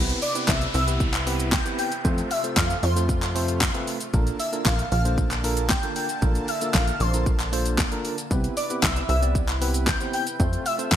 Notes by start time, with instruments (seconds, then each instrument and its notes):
Already playing: analog synth bass C2, supersaw synth C3 E4 B4, tine electric piano B3 C4 E4 G4 B4, downlifter
0.09 closed hi-hat, shaker
0.22 digital synth lead D5, open hi-hat, shaker
0.35 tine electric piano B3 C4 E4 G4 B4, closed hi-hat, shaker
0.48 analog synth bass C2, digital synth lead E5, kick, snare, clap, shaker
0.61 closed hi-hat, shaker
0.74 analog synth bass C2, digital synth lead E5, open hi-hat, shaker
0.87 tine electric piano B3 C4 E4 G4 B4, closed hi-hat, shaker
1.00 kick, shaker
1.14 clap, closed hi-hat, shaker
1.26 tine electric piano B3 C4 E4 G4 B4, open hi-hat, shaker
1.40 closed hi-hat, shaker
1.52 digital synth lead G5, kick, snare, clap, shaker
1.65 tine electric piano B3 C4 E4 G4 B4, closed hi-hat, shaker
1.78 digital synth lead G5, open hi-hat, shaker
1.92 closed hi-hat, shaker
2.04 analog synth bass F2, supersaw synth C3 A3 F4, tine electric piano A3 C4 F4 A4 C5, kick, shaker
2.18 closed hi-hat, shaker
2.31 digital synth lead E5, open hi-hat, shaker
2.44 tine electric piano A3 C4 F4 A4 C5, closed hi-hat, shaker
2.57 analog synth bass F2, digital synth lead F5, kick, snare, clap, shaker
2.70 closed hi-hat, shaker
2.83 analog synth bass F2, digital synth lead C5, open hi-hat, shaker
2.96 tine electric piano A3 C4 F4 A4 C5, closed hi-hat, shaker
3.09 kick, shaker
3.22 clap, closed hi-hat, shaker
3.35 tine electric piano A3 C4 F4 A4 C5, open hi-hat, shaker
3.48 closed hi-hat, shaker
3.61 kick, snare, clap, shaker
3.74 tine electric piano A3 C4 F4 A4 B4, closed hi-hat, shaker
3.87 open hi-hat, shaker
4.00 closed hi-hat, shaker
4.13 analog synth bass A#1, supersaw synth D3 A#3 A5, tine electric piano A#3 D4 F4 A4 A#4, kick, shaker
4.27 closed hi-hat, shaker
4.40 digital synth lead E5, open hi-hat, shaker
4.52 tine electric piano A#3 D4 F4 A4 A#4, closed hi-hat, shaker
4.65 analog synth bass A#1, digital synth lead F5, kick, snare, clap, shaker
4.79 closed hi-hat, shaker
4.92 analog synth bass A#1, digital synth lead F5, open hi-hat, shaker
5.05 tine electric piano A#3 D4 F4 A4 C5, closed hi-hat, shaker
5.18 kick, shaker
5.31 clap, closed hi-hat, shaker
5.44 tine electric piano A#3 D4 F4 A4 A#4, open hi-hat, shaker
5.57 closed hi-hat, shaker
5.69 digital synth lead G5, kick, snare, clap, shaker
5.83 tine electric piano A#3 D4 F4 A4 A#4, closed hi-hat, shaker
5.96 digital synth lead G5, open hi-hat, shaker
6.09 closed hi-hat, shaker
6.22 analog synth bass A#1, tine electric piano A#3 D4 F4 A4 A#4, kick, shaker
6.35 closed hi-hat, shaker
6.48 digital synth lead E5, open hi-hat, shaker
6.61 tine electric piano A#3 D4 F4 A4 A#4, closed hi-hat, shaker
6.74 analog synth bass A#1, digital synth lead F5, kick, snare, clap, shaker
6.87 closed hi-hat, shaker
7.00 analog synth bass A#1, digital synth lead C5, open hi-hat, shaker
7.13 tine electric piano A#3 D4 F4 A4 A#4, closed hi-hat, shaker
7.26 kick, shaker
7.40 clap, closed hi-hat, shaker
7.53 tine electric piano A#3 D4 F4 A4 C5, open hi-hat, shaker
7.66 closed hi-hat, shaker
7.78 kick, snare, clap, shaker
7.92 tine electric piano A#3 D4 F4 A4 A#4, closed hi-hat, shaker
8.05 open hi-hat, shaker
8.18 closed hi-hat, shaker
8.31 analog synth bass C2, supersaw synth C3 E4 B4, tine electric piano B3 C4 E4 G4 B4, kick, shaker
8.44 closed hi-hat, shaker
8.57 digital synth lead D5, open hi-hat, shaker
8.70 tine electric piano B3 C4 E4 G4 B4, closed hi-hat, shaker
8.83 analog synth bass C2, digital synth lead E5, kick, snare, clap, shaker
8.96 closed hi-hat, shaker
9.09 analog synth bass C2, digital synth lead E5, open hi-hat, shaker
9.22 tine electric piano B3 C4 E4 G4 D5, closed hi-hat, shaker
9.35 kick, shaker
9.49 clap, closed hi-hat, shaker
9.61 tine electric piano B3 C4 E4 G4 B4, open hi-hat, shaker
9.74 closed hi-hat, shaker
9.87 digital synth lead G5, kick, snare, clap, shaker
10.00 tine electric piano B3 C4 E4 G4 C5, closed hi-hat, shaker
10.13 digital synth lead G5, open hi-hat, shaker
10.27 closed hi-hat, shaker
10.39 analog synth bass F2, supersaw synth C3 A3 F4, tine electric piano A3 C4 F4 A4 C5, kick, shaker
10.53 closed hi-hat, shaker
10.66 digital synth lead E5, open hi-hat, shaker
10.78 tine electric piano A3 C4 F4 A4 C5, closed hi-hat, shaker
10.92 analog synth bass F2, digital synth lead F5, kick, snare, clap, shaker